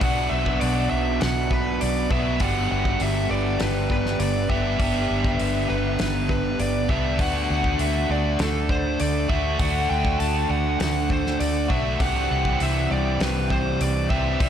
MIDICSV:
0, 0, Header, 1, 5, 480
1, 0, Start_track
1, 0, Tempo, 599401
1, 14, Time_signature, 4, 2, 24, 8
1, 11605, End_track
2, 0, Start_track
2, 0, Title_t, "Lead electric guitar"
2, 0, Program_c, 0, 29
2, 7, Note_on_c, 0, 78, 94
2, 238, Note_on_c, 0, 76, 86
2, 257, Note_off_c, 0, 78, 0
2, 467, Note_off_c, 0, 76, 0
2, 484, Note_on_c, 0, 74, 81
2, 718, Note_off_c, 0, 74, 0
2, 722, Note_on_c, 0, 76, 82
2, 965, Note_on_c, 0, 78, 86
2, 972, Note_off_c, 0, 76, 0
2, 1208, Note_on_c, 0, 71, 78
2, 1214, Note_off_c, 0, 78, 0
2, 1446, Note_on_c, 0, 74, 86
2, 1454, Note_off_c, 0, 71, 0
2, 1692, Note_off_c, 0, 74, 0
2, 1695, Note_on_c, 0, 76, 88
2, 1929, Note_on_c, 0, 78, 94
2, 1937, Note_off_c, 0, 76, 0
2, 2150, Note_off_c, 0, 78, 0
2, 2175, Note_on_c, 0, 78, 94
2, 2417, Note_off_c, 0, 78, 0
2, 2417, Note_on_c, 0, 76, 81
2, 2646, Note_off_c, 0, 76, 0
2, 2649, Note_on_c, 0, 74, 86
2, 2893, Note_off_c, 0, 74, 0
2, 2896, Note_on_c, 0, 71, 82
2, 3127, Note_off_c, 0, 71, 0
2, 3136, Note_on_c, 0, 71, 78
2, 3358, Note_on_c, 0, 74, 86
2, 3377, Note_off_c, 0, 71, 0
2, 3599, Note_off_c, 0, 74, 0
2, 3602, Note_on_c, 0, 76, 93
2, 4560, Note_on_c, 0, 71, 87
2, 4591, Note_off_c, 0, 76, 0
2, 5037, Note_off_c, 0, 71, 0
2, 5047, Note_on_c, 0, 71, 79
2, 5282, Note_on_c, 0, 74, 89
2, 5292, Note_off_c, 0, 71, 0
2, 5525, Note_off_c, 0, 74, 0
2, 5528, Note_on_c, 0, 76, 82
2, 5767, Note_on_c, 0, 78, 98
2, 5773, Note_off_c, 0, 76, 0
2, 5996, Note_off_c, 0, 78, 0
2, 6006, Note_on_c, 0, 78, 90
2, 6250, Note_on_c, 0, 76, 87
2, 6253, Note_off_c, 0, 78, 0
2, 6493, Note_off_c, 0, 76, 0
2, 6497, Note_on_c, 0, 74, 90
2, 6725, Note_on_c, 0, 69, 84
2, 6738, Note_off_c, 0, 74, 0
2, 6966, Note_off_c, 0, 69, 0
2, 6969, Note_on_c, 0, 72, 87
2, 7207, Note_on_c, 0, 74, 92
2, 7215, Note_off_c, 0, 72, 0
2, 7443, Note_off_c, 0, 74, 0
2, 7447, Note_on_c, 0, 76, 88
2, 7682, Note_on_c, 0, 78, 104
2, 7694, Note_off_c, 0, 76, 0
2, 7924, Note_off_c, 0, 78, 0
2, 7927, Note_on_c, 0, 79, 103
2, 8165, Note_off_c, 0, 79, 0
2, 8168, Note_on_c, 0, 81, 91
2, 8411, Note_off_c, 0, 81, 0
2, 8414, Note_on_c, 0, 78, 91
2, 8635, Note_off_c, 0, 78, 0
2, 8644, Note_on_c, 0, 78, 93
2, 8893, Note_on_c, 0, 72, 88
2, 8895, Note_off_c, 0, 78, 0
2, 9127, Note_on_c, 0, 74, 100
2, 9139, Note_off_c, 0, 72, 0
2, 9352, Note_off_c, 0, 74, 0
2, 9378, Note_on_c, 0, 76, 93
2, 9618, Note_on_c, 0, 78, 101
2, 9622, Note_off_c, 0, 76, 0
2, 9851, Note_off_c, 0, 78, 0
2, 9861, Note_on_c, 0, 78, 97
2, 10104, Note_off_c, 0, 78, 0
2, 10111, Note_on_c, 0, 76, 95
2, 10343, Note_off_c, 0, 76, 0
2, 10346, Note_on_c, 0, 74, 90
2, 10581, Note_on_c, 0, 71, 89
2, 10587, Note_off_c, 0, 74, 0
2, 10816, Note_off_c, 0, 71, 0
2, 10819, Note_on_c, 0, 72, 89
2, 11062, Note_on_c, 0, 74, 98
2, 11064, Note_off_c, 0, 72, 0
2, 11282, Note_off_c, 0, 74, 0
2, 11291, Note_on_c, 0, 76, 96
2, 11605, Note_off_c, 0, 76, 0
2, 11605, End_track
3, 0, Start_track
3, 0, Title_t, "Overdriven electric guitar"
3, 0, Program_c, 1, 29
3, 5, Note_on_c, 1, 47, 81
3, 13, Note_on_c, 1, 54, 78
3, 20, Note_on_c, 1, 59, 85
3, 24, Note_on_c, 1, 62, 86
3, 27, Note_on_c, 1, 66, 85
3, 1668, Note_off_c, 1, 47, 0
3, 1672, Note_off_c, 1, 54, 0
3, 1673, Note_off_c, 1, 66, 0
3, 1682, Note_on_c, 1, 66, 84
3, 1687, Note_off_c, 1, 62, 0
3, 1689, Note_off_c, 1, 59, 0
3, 1691, Note_on_c, 1, 62, 88
3, 1692, Note_on_c, 1, 59, 74
3, 1698, Note_on_c, 1, 54, 75
3, 1706, Note_on_c, 1, 47, 71
3, 1910, Note_off_c, 1, 66, 0
3, 1918, Note_off_c, 1, 54, 0
3, 1921, Note_off_c, 1, 47, 0
3, 1921, Note_on_c, 1, 43, 78
3, 1926, Note_on_c, 1, 50, 80
3, 1932, Note_off_c, 1, 59, 0
3, 1932, Note_on_c, 1, 55, 73
3, 1933, Note_off_c, 1, 62, 0
3, 1935, Note_on_c, 1, 59, 86
3, 1936, Note_on_c, 1, 62, 92
3, 1940, Note_on_c, 1, 67, 88
3, 3586, Note_off_c, 1, 43, 0
3, 3588, Note_off_c, 1, 50, 0
3, 3590, Note_off_c, 1, 67, 0
3, 3591, Note_off_c, 1, 55, 0
3, 3593, Note_off_c, 1, 59, 0
3, 3600, Note_on_c, 1, 67, 77
3, 3601, Note_off_c, 1, 62, 0
3, 3604, Note_on_c, 1, 62, 72
3, 3611, Note_on_c, 1, 59, 71
3, 3615, Note_on_c, 1, 55, 72
3, 3617, Note_on_c, 1, 50, 69
3, 3622, Note_on_c, 1, 43, 68
3, 3823, Note_off_c, 1, 43, 0
3, 3826, Note_off_c, 1, 50, 0
3, 3827, Note_off_c, 1, 67, 0
3, 3832, Note_off_c, 1, 59, 0
3, 3832, Note_on_c, 1, 43, 75
3, 3834, Note_off_c, 1, 55, 0
3, 3836, Note_on_c, 1, 50, 78
3, 3844, Note_on_c, 1, 55, 82
3, 3847, Note_on_c, 1, 59, 82
3, 3848, Note_off_c, 1, 62, 0
3, 3851, Note_on_c, 1, 62, 91
3, 3853, Note_on_c, 1, 67, 84
3, 5503, Note_off_c, 1, 67, 0
3, 5504, Note_off_c, 1, 43, 0
3, 5506, Note_off_c, 1, 50, 0
3, 5510, Note_off_c, 1, 55, 0
3, 5512, Note_off_c, 1, 59, 0
3, 5512, Note_off_c, 1, 62, 0
3, 5512, Note_on_c, 1, 67, 76
3, 5516, Note_on_c, 1, 62, 80
3, 5521, Note_on_c, 1, 59, 77
3, 5526, Note_on_c, 1, 55, 82
3, 5531, Note_on_c, 1, 50, 61
3, 5535, Note_on_c, 1, 43, 65
3, 5744, Note_off_c, 1, 67, 0
3, 5746, Note_off_c, 1, 50, 0
3, 5748, Note_off_c, 1, 59, 0
3, 5751, Note_off_c, 1, 55, 0
3, 5755, Note_off_c, 1, 43, 0
3, 5756, Note_on_c, 1, 50, 74
3, 5762, Note_on_c, 1, 57, 73
3, 5767, Note_off_c, 1, 62, 0
3, 5770, Note_on_c, 1, 62, 81
3, 5777, Note_on_c, 1, 66, 78
3, 7427, Note_off_c, 1, 66, 0
3, 7429, Note_off_c, 1, 50, 0
3, 7432, Note_off_c, 1, 57, 0
3, 7436, Note_off_c, 1, 62, 0
3, 7437, Note_on_c, 1, 66, 89
3, 7447, Note_on_c, 1, 62, 85
3, 7453, Note_on_c, 1, 57, 73
3, 7462, Note_on_c, 1, 50, 68
3, 7668, Note_off_c, 1, 66, 0
3, 7673, Note_off_c, 1, 50, 0
3, 7673, Note_off_c, 1, 62, 0
3, 7676, Note_off_c, 1, 57, 0
3, 7683, Note_on_c, 1, 50, 80
3, 7690, Note_on_c, 1, 57, 83
3, 7700, Note_on_c, 1, 62, 76
3, 7702, Note_on_c, 1, 66, 90
3, 9343, Note_off_c, 1, 66, 0
3, 9353, Note_on_c, 1, 66, 82
3, 9354, Note_off_c, 1, 50, 0
3, 9354, Note_off_c, 1, 62, 0
3, 9358, Note_off_c, 1, 57, 0
3, 9363, Note_on_c, 1, 62, 85
3, 9369, Note_on_c, 1, 57, 73
3, 9374, Note_on_c, 1, 50, 69
3, 9588, Note_off_c, 1, 66, 0
3, 9593, Note_off_c, 1, 62, 0
3, 9596, Note_off_c, 1, 57, 0
3, 9599, Note_off_c, 1, 50, 0
3, 9599, Note_on_c, 1, 48, 86
3, 9608, Note_on_c, 1, 52, 79
3, 9614, Note_on_c, 1, 55, 74
3, 9621, Note_on_c, 1, 60, 90
3, 9621, Note_on_c, 1, 67, 93
3, 11274, Note_off_c, 1, 48, 0
3, 11279, Note_off_c, 1, 52, 0
3, 11279, Note_off_c, 1, 67, 0
3, 11282, Note_off_c, 1, 55, 0
3, 11285, Note_off_c, 1, 60, 0
3, 11289, Note_on_c, 1, 67, 78
3, 11298, Note_on_c, 1, 60, 80
3, 11305, Note_on_c, 1, 55, 71
3, 11311, Note_on_c, 1, 52, 75
3, 11314, Note_on_c, 1, 48, 69
3, 11517, Note_off_c, 1, 48, 0
3, 11518, Note_off_c, 1, 67, 0
3, 11522, Note_off_c, 1, 60, 0
3, 11523, Note_off_c, 1, 52, 0
3, 11526, Note_off_c, 1, 55, 0
3, 11527, Note_on_c, 1, 48, 85
3, 11533, Note_on_c, 1, 52, 83
3, 11538, Note_on_c, 1, 55, 85
3, 11545, Note_on_c, 1, 60, 88
3, 11547, Note_on_c, 1, 67, 85
3, 11605, Note_off_c, 1, 48, 0
3, 11605, Note_off_c, 1, 52, 0
3, 11605, Note_off_c, 1, 55, 0
3, 11605, Note_off_c, 1, 60, 0
3, 11605, Note_off_c, 1, 67, 0
3, 11605, End_track
4, 0, Start_track
4, 0, Title_t, "Fingered electric bass"
4, 0, Program_c, 2, 33
4, 15, Note_on_c, 2, 35, 77
4, 232, Note_off_c, 2, 35, 0
4, 252, Note_on_c, 2, 35, 88
4, 470, Note_off_c, 2, 35, 0
4, 496, Note_on_c, 2, 35, 90
4, 712, Note_off_c, 2, 35, 0
4, 733, Note_on_c, 2, 35, 84
4, 950, Note_off_c, 2, 35, 0
4, 981, Note_on_c, 2, 35, 88
4, 1421, Note_off_c, 2, 35, 0
4, 1459, Note_on_c, 2, 35, 84
4, 1672, Note_off_c, 2, 35, 0
4, 1689, Note_on_c, 2, 35, 78
4, 1906, Note_off_c, 2, 35, 0
4, 1927, Note_on_c, 2, 31, 79
4, 2145, Note_off_c, 2, 31, 0
4, 2175, Note_on_c, 2, 31, 83
4, 2389, Note_off_c, 2, 31, 0
4, 2410, Note_on_c, 2, 31, 94
4, 2626, Note_off_c, 2, 31, 0
4, 2646, Note_on_c, 2, 31, 81
4, 2864, Note_off_c, 2, 31, 0
4, 2890, Note_on_c, 2, 31, 86
4, 3334, Note_off_c, 2, 31, 0
4, 3364, Note_on_c, 2, 31, 84
4, 3582, Note_off_c, 2, 31, 0
4, 3603, Note_on_c, 2, 31, 80
4, 3821, Note_off_c, 2, 31, 0
4, 3844, Note_on_c, 2, 31, 79
4, 4062, Note_off_c, 2, 31, 0
4, 4087, Note_on_c, 2, 31, 87
4, 4304, Note_off_c, 2, 31, 0
4, 4328, Note_on_c, 2, 31, 84
4, 4544, Note_off_c, 2, 31, 0
4, 4565, Note_on_c, 2, 31, 79
4, 4783, Note_off_c, 2, 31, 0
4, 4806, Note_on_c, 2, 31, 81
4, 5253, Note_off_c, 2, 31, 0
4, 5284, Note_on_c, 2, 31, 86
4, 5503, Note_off_c, 2, 31, 0
4, 5521, Note_on_c, 2, 36, 78
4, 5760, Note_off_c, 2, 36, 0
4, 5760, Note_on_c, 2, 38, 80
4, 5981, Note_off_c, 2, 38, 0
4, 6008, Note_on_c, 2, 38, 89
4, 6225, Note_off_c, 2, 38, 0
4, 6242, Note_on_c, 2, 38, 85
4, 6463, Note_off_c, 2, 38, 0
4, 6482, Note_on_c, 2, 38, 73
4, 6703, Note_off_c, 2, 38, 0
4, 6726, Note_on_c, 2, 38, 86
4, 7175, Note_off_c, 2, 38, 0
4, 7212, Note_on_c, 2, 38, 82
4, 7429, Note_off_c, 2, 38, 0
4, 7447, Note_on_c, 2, 38, 75
4, 7667, Note_off_c, 2, 38, 0
4, 7686, Note_on_c, 2, 38, 81
4, 7906, Note_off_c, 2, 38, 0
4, 7934, Note_on_c, 2, 38, 94
4, 8150, Note_off_c, 2, 38, 0
4, 8173, Note_on_c, 2, 38, 92
4, 8390, Note_off_c, 2, 38, 0
4, 8405, Note_on_c, 2, 38, 78
4, 8626, Note_off_c, 2, 38, 0
4, 8651, Note_on_c, 2, 38, 81
4, 9099, Note_off_c, 2, 38, 0
4, 9135, Note_on_c, 2, 38, 83
4, 9352, Note_off_c, 2, 38, 0
4, 9372, Note_on_c, 2, 35, 84
4, 9591, Note_off_c, 2, 35, 0
4, 9613, Note_on_c, 2, 36, 72
4, 9831, Note_off_c, 2, 36, 0
4, 9860, Note_on_c, 2, 36, 89
4, 10075, Note_off_c, 2, 36, 0
4, 10098, Note_on_c, 2, 36, 88
4, 10315, Note_off_c, 2, 36, 0
4, 10341, Note_on_c, 2, 36, 80
4, 10557, Note_off_c, 2, 36, 0
4, 10577, Note_on_c, 2, 36, 91
4, 11024, Note_off_c, 2, 36, 0
4, 11057, Note_on_c, 2, 36, 83
4, 11275, Note_off_c, 2, 36, 0
4, 11296, Note_on_c, 2, 36, 79
4, 11515, Note_off_c, 2, 36, 0
4, 11537, Note_on_c, 2, 36, 73
4, 11605, Note_off_c, 2, 36, 0
4, 11605, End_track
5, 0, Start_track
5, 0, Title_t, "Drums"
5, 10, Note_on_c, 9, 46, 59
5, 11, Note_on_c, 9, 36, 115
5, 90, Note_off_c, 9, 46, 0
5, 91, Note_off_c, 9, 36, 0
5, 370, Note_on_c, 9, 36, 78
5, 450, Note_off_c, 9, 36, 0
5, 491, Note_on_c, 9, 46, 53
5, 571, Note_off_c, 9, 46, 0
5, 968, Note_on_c, 9, 46, 48
5, 976, Note_on_c, 9, 38, 105
5, 1049, Note_off_c, 9, 46, 0
5, 1056, Note_off_c, 9, 38, 0
5, 1208, Note_on_c, 9, 36, 83
5, 1288, Note_off_c, 9, 36, 0
5, 1450, Note_on_c, 9, 46, 52
5, 1530, Note_off_c, 9, 46, 0
5, 1686, Note_on_c, 9, 36, 87
5, 1766, Note_off_c, 9, 36, 0
5, 1921, Note_on_c, 9, 46, 52
5, 1925, Note_on_c, 9, 36, 108
5, 2001, Note_off_c, 9, 46, 0
5, 2005, Note_off_c, 9, 36, 0
5, 2285, Note_on_c, 9, 36, 80
5, 2365, Note_off_c, 9, 36, 0
5, 2401, Note_on_c, 9, 46, 51
5, 2481, Note_off_c, 9, 46, 0
5, 2880, Note_on_c, 9, 46, 54
5, 2887, Note_on_c, 9, 38, 105
5, 2960, Note_off_c, 9, 46, 0
5, 2967, Note_off_c, 9, 38, 0
5, 3122, Note_on_c, 9, 36, 80
5, 3202, Note_off_c, 9, 36, 0
5, 3250, Note_on_c, 9, 38, 33
5, 3330, Note_off_c, 9, 38, 0
5, 3362, Note_on_c, 9, 46, 57
5, 3442, Note_off_c, 9, 46, 0
5, 3601, Note_on_c, 9, 36, 80
5, 3681, Note_off_c, 9, 36, 0
5, 3841, Note_on_c, 9, 36, 109
5, 3841, Note_on_c, 9, 46, 58
5, 3921, Note_off_c, 9, 36, 0
5, 3921, Note_off_c, 9, 46, 0
5, 4200, Note_on_c, 9, 36, 85
5, 4280, Note_off_c, 9, 36, 0
5, 4320, Note_on_c, 9, 46, 52
5, 4401, Note_off_c, 9, 46, 0
5, 4795, Note_on_c, 9, 46, 50
5, 4803, Note_on_c, 9, 38, 102
5, 4875, Note_off_c, 9, 46, 0
5, 4883, Note_off_c, 9, 38, 0
5, 5039, Note_on_c, 9, 36, 76
5, 5119, Note_off_c, 9, 36, 0
5, 5281, Note_on_c, 9, 46, 53
5, 5362, Note_off_c, 9, 46, 0
5, 5519, Note_on_c, 9, 36, 79
5, 5599, Note_off_c, 9, 36, 0
5, 5758, Note_on_c, 9, 46, 57
5, 5759, Note_on_c, 9, 36, 108
5, 5838, Note_off_c, 9, 46, 0
5, 5839, Note_off_c, 9, 36, 0
5, 6120, Note_on_c, 9, 36, 79
5, 6200, Note_off_c, 9, 36, 0
5, 6240, Note_on_c, 9, 46, 49
5, 6320, Note_off_c, 9, 46, 0
5, 6719, Note_on_c, 9, 46, 47
5, 6726, Note_on_c, 9, 38, 98
5, 6799, Note_off_c, 9, 46, 0
5, 6806, Note_off_c, 9, 38, 0
5, 6962, Note_on_c, 9, 36, 79
5, 7042, Note_off_c, 9, 36, 0
5, 7204, Note_on_c, 9, 46, 59
5, 7284, Note_off_c, 9, 46, 0
5, 7444, Note_on_c, 9, 36, 78
5, 7524, Note_off_c, 9, 36, 0
5, 7683, Note_on_c, 9, 46, 61
5, 7684, Note_on_c, 9, 36, 110
5, 7763, Note_off_c, 9, 46, 0
5, 7764, Note_off_c, 9, 36, 0
5, 8045, Note_on_c, 9, 36, 87
5, 8125, Note_off_c, 9, 36, 0
5, 8168, Note_on_c, 9, 46, 53
5, 8248, Note_off_c, 9, 46, 0
5, 8649, Note_on_c, 9, 46, 54
5, 8656, Note_on_c, 9, 38, 101
5, 8729, Note_off_c, 9, 46, 0
5, 8736, Note_off_c, 9, 38, 0
5, 8889, Note_on_c, 9, 36, 85
5, 8969, Note_off_c, 9, 36, 0
5, 9018, Note_on_c, 9, 38, 30
5, 9098, Note_off_c, 9, 38, 0
5, 9133, Note_on_c, 9, 46, 55
5, 9213, Note_off_c, 9, 46, 0
5, 9370, Note_on_c, 9, 36, 84
5, 9450, Note_off_c, 9, 36, 0
5, 9610, Note_on_c, 9, 36, 109
5, 9612, Note_on_c, 9, 46, 51
5, 9691, Note_off_c, 9, 36, 0
5, 9692, Note_off_c, 9, 46, 0
5, 9971, Note_on_c, 9, 36, 80
5, 10051, Note_off_c, 9, 36, 0
5, 10092, Note_on_c, 9, 46, 51
5, 10173, Note_off_c, 9, 46, 0
5, 10574, Note_on_c, 9, 46, 48
5, 10581, Note_on_c, 9, 38, 112
5, 10654, Note_off_c, 9, 46, 0
5, 10661, Note_off_c, 9, 38, 0
5, 10814, Note_on_c, 9, 36, 85
5, 10894, Note_off_c, 9, 36, 0
5, 11057, Note_on_c, 9, 46, 55
5, 11137, Note_off_c, 9, 46, 0
5, 11294, Note_on_c, 9, 36, 82
5, 11374, Note_off_c, 9, 36, 0
5, 11535, Note_on_c, 9, 36, 109
5, 11535, Note_on_c, 9, 46, 56
5, 11605, Note_off_c, 9, 36, 0
5, 11605, Note_off_c, 9, 46, 0
5, 11605, End_track
0, 0, End_of_file